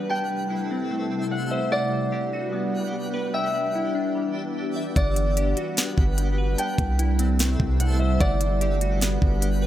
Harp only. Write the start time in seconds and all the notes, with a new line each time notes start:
Already playing: D5
0.10 G5
1.31 F#5
1.51 E5
1.72 D5
3.34 E5
4.96 D5
6.59 G5
7.80 F#5
7.99 E5
8.20 D5